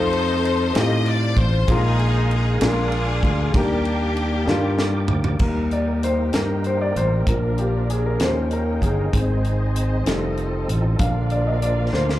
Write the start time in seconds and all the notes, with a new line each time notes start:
Already playing: F2 A3 C4 D#4 F4 A4 C5 F5 A5
0.13 ride
0.45 ride
0.73 A2 A3 C4 D#4 F4 G4, snare, ride
0.78 D#5
1.06 D5, ride
1.36 A1 C5, kick, ride
1.67 A#1 A#2 G#3 A#3 D4 F4 A#4 F5 G#5, kick, ride
1.72 D#4 G#4
1.76 D#4
1.99 ride
2.31 G#4, ride
2.59 A#1 A#2 G#3 A#3 D4 F4 D6, snare, ride
2.64 D4 F4 G#4 A#4
2.92 ride
3.23 D2, kick, ride
3.52 D#2 D#3 G3 A#3 D4 G4 A#4 D5 G5, kick, ride
3.57 A#3 D4 G4
3.85 ride
4.17 ride
4.45 G2 D#3 G3 A#3 D4, snare
4.49 F4
4.79 snare
5.08 D2, floor tom
5.24 floor tom
5.39 D#2 G3 A#3 D#4 G4 A#4 G5, kick, crash
5.71 D5, closed hi-hat
6.03 C5, closed hi-hat
6.33 G2 A#4, snare, closed hi-hat
6.64 C5, closed hi-hat
6.82 D5
6.96 A1 C5, closed hi-hat
7.26 A#1 F3 A#3 D4 F4 A#4 D5, kick, closed hi-hat
7.58 G4, closed hi-hat
7.90 G#4, closed hi-hat
8.06 A#4
8.19 D#2 F3 A#3 C#4 D#4 G4 C5 G5, snare, closed hi-hat
8.51 A#4, closed hi-hat
8.75 A#4
8.82 G1 G#4, kick, closed hi-hat
9.12 G#1 D#3 G#3 C4 D#4 G#4 C5 D#5, kick, closed hi-hat
9.44 closed hi-hat
9.76 closed hi-hat
10.06 F1 D#3 F3 G3 A3 F4 A4, snare, closed hi-hat
10.37 closed hi-hat
10.68 A1, closed hi-hat
10.99 A#1 D3 F3 A#3 D4 F4 A#4 D5 F5, kick, closed hi-hat
11.30 D5, closed hi-hat
11.47 D#5
11.62 D5, closed hi-hat
11.93 D2 C5, snare
12.09 snare